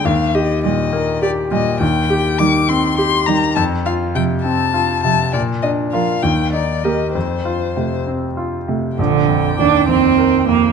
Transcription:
<<
  \new Staff \with { instrumentName = "Violin" } { \time 6/8 \key ees \major \tempo 4. = 67 f''8 ees''8 ees''4 d''8 ees''8 | \key bes \major g''4 d'''8 c'''8 c'''8 bes''8 | a''8 f''8 g''8 a''4 a''8 | d''8 ees''8 f''8 g''8 d''8 ees''8 |
c''4. r4. | g''2. | }
  \new Staff \with { instrumentName = "Cello" } { \clef bass \time 6/8 \key ees \major r4 g8 r4 g8 | \key bes \major r4 g8 r4 g8 | r4 f8 r4 f8 | r4 f8 r4 bes8 |
r4 a8 r4 a8 | d4 d'8 c'4 bes8 | }
  \new Staff \with { instrumentName = "Grand piano" } { \clef bass \time 6/8 \key ees \major ees,8 g'8 bes,8 bes8 g'8 bes,8 | \key bes \major ees,8 g'8 ees8 c'8 g'8 ees8 | f,8 f'8 c8 c'8 f'8 c8 | bes,8 d'8 <f' bes'>8 ees,8 ees'8 <g' bes'>8 |
f,8 f'8 c8 c'8 f'8 c8 | bes,,8 f,8 ees,8 f,8 bes'8 f,8 | }
>>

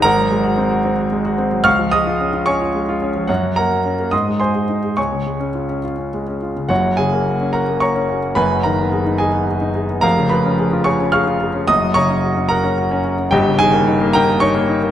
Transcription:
\new Staff \with { instrumentName = "Grand piano" } { \time 6/8 \key des \major \tempo 4. = 73 << { <bes' ges'' bes''>2. | <f'' des''' f'''>8 <ees'' ees'''>4 <des'' aes'' des'''>4. | <ges' des'' ges''>8 <bes' ges'' bes''>4 <ees'' c''' ees'''>8 <c'' aes'' c'''>4 | <des'' aes'' des'''>4. r4. |
\key fis \major <fis' cis'' fis''>8 <gis' gis''>4 <ais' fis'' ais''>8 <cis'' ais'' cis'''>4 | <b' gis'' b''>8 <ais' ais''>4 <gis' dis'' gis''>4. | <ais' eis'' ais''>8 <b' b''>4 <cis'' gis'' cis'''>8 <eis'' cis''' eis'''>4 | <dis'' dis'''>8 <cis'' ais'' cis'''>4 <ais' fis'' ais''>4. |
<g' dis'' g''>8 <gis' gis''>4 <ais' g'' ais''>8 <cis'' ais'' cis'''>4 | } \\ { aes,,16 ges16 aes16 ges'16 c'16 ges'16 c'16 ges'16 aes16 ges'16 c'16 ges16 | des,16 f16 aes16 f'16 des'16 f'16 des'16 f'16 aes16 f'16 des'16 f16 | ges,16 ges16 bes16 ges16 des'16 bes16 aes,16 aes16 ges'16 aes'16 ees'16 aes'16 | des,16 des16 aes16 des'16 f'16 des'16 f'16 des'16 aes16 des'16 f'16 des16 |
<fis,, fis,>16 fis16 cis16 ais16 fis'16 cis'16 fis'16 ais16 fis'16 cis'16 fis'16 ais16 | <fis,, fis,>16 fis16 dis16 b16 gis'16 dis'8 b16 gis'16 dis'16 gis'16 b16 | <eis,, eis,>16 cis16 eis16 cis'16 gis'16 eis'16 gis'16 cis'16 gis'16 eis'16 gis'16 cis'16 | <fis,, fis,>16 fis16 cis16 cis'16 fis'16 cis'16 fis'16 cis'16 fis'16 cis'16 fis'16 cis'16 |
<g,, g,>16 cis16 dis16 ais16 dis'16 ais16 dis'16 ais16 dis'16 ais16 dis'16 ais16 | } >> }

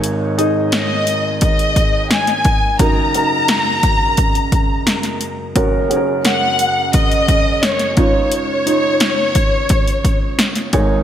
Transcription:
<<
  \new Staff \with { instrumentName = "Violin section" } { \time 4/4 \key des \major \tempo 4 = 87 r4 ees''4 ees''4 aes''4 | bes''2.~ bes''8 r8 | r4 ges''4 ees''4 des''8 des''8~ | des''2.~ des''8 r8 | }
  \new Staff \with { instrumentName = "Grand piano" } { \time 4/4 \key des \major <ees' aes' des''>8 <ees' aes' ees''>2 r4. | <ees' ges' bes'>8 <ees' ges' bes'>2 r4. | <des' ges' bes'>8 <des' ges' aes' bes'>2 r4 <ees' f' des''>8~ | <ees' f' des''>8 <ees' f' des''>2 r4 <ees' aes' des''>8 | }
  \new Staff \with { instrumentName = "Grand piano" } { \clef bass \time 4/4 \key des \major <aes,, aes,>2.~ <aes,, aes,>8 r8 | <ges,, ges,>1 | <ges,, ges,>2.~ <ges,, ges,>8 <des, des>8~ | <des, des>2.~ <des, des>8 <aes,, aes,>8 | }
  \new DrumStaff \with { instrumentName = "Drums" } \drummode { \time 4/4 hh8 hh8 <hh sn>8 hh8 <hh bd>16 hh16 <hh bd>8 <hh sn>16 <hh sn>16 <hh bd>8 | <hh bd>8 hh8 <hh sn>8 <hh bd>8 <hh bd>16 hh16 <hh bd>8 <hh sn>16 <hh sn>16 hh8 | <hh bd>8 hh8 <hh sn>8 hh8 <hh bd>16 hh16 <hh bd>8 <hh sn>16 <hh sn>16 <hh bd>8 | hh8 hh8 <hh sn>8 <hh bd>8 <hh bd>16 hh16 <hh bd>8 <hh sn>16 <hh sn>16 <hh bd>8 | }
>>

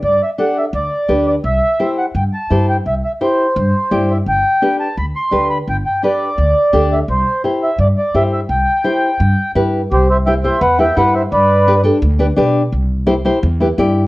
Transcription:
<<
  \new Staff \with { instrumentName = "Accordion" } { \time 4/4 \key c \lydian \tempo 4 = 170 d''8 e''8 fis''8 e''8 d''4. d''8 | e''4. fis''8 g''8 a''4 g''8 | e''8 e''8 c''2~ c''8 e''8 | g''4. a''8 b''8 c'''4 b''8 |
g''8 g''8 d''2~ d''8 e''8 | c''4 r8 e''8 d''8 d''8 e''8 e''8 | g''2. r4 | <g' c''>8 <c'' e''>8 <e'' g''>8 <c'' e''>8 <b' fis''>8 <e'' g''>8 <b' fis''>8 <c'' e''>8 |
<b' d''>4. r2 r8 | r1 | }
  \new Staff \with { instrumentName = "Nylon-string guitar" } { \time 4/4 \key c \lydian r4 <d' g' a'>8 r4. <d' g' b'>8 r8 | r4 <e' g' c''>8 r4. <e' g' c''>8 r8 | r4 <e' g' c''>8 r4. <e' g' d''>8 r8 | r4 <d' g' b'>8 r4. <d' g' b'>8 r8 |
r4 <d' g' b'>8 r4. <d' g' a'>8 r8 | r4 <e' g' c''>8 r4. <e' g' c''>8 r8 | r4 <e' g' c''>8 r4. <e' g' b'>8 r8 | r4 <e' g' c''>8 <e' g' c''>8 r8 <e' g' b'>8 <e' g' b'>8 r8 |
r4 <d' g' b'>8 <d' g' a'>8 r8 <d' g' b'>8 <d' g' b'>8 r8 | r4 <e' g' c''>8 <e' g' c''>8 r8 <e' g' b'>8 <e' g' d''>8 r8 | }
  \new Staff \with { instrumentName = "Upright bass" } { \clef bass \time 4/4 \key c \lydian g,8 r4. d,8 r8 d,4 | c,8 r4. g,8 r8 g,4 | c,8 r4. g,8 r8 g,4 | g,,8 r4. d,8 r8 d,4 |
g,,8 r4. d,8 r8 d,4 | c,8 r4. g,8 r8 g,4 | c,8 r4. g,8 r8 g,4 | c,2 e,4 g,4 |
g,2 d,4 b,4 | c,2 e,4 g,4 | }
>>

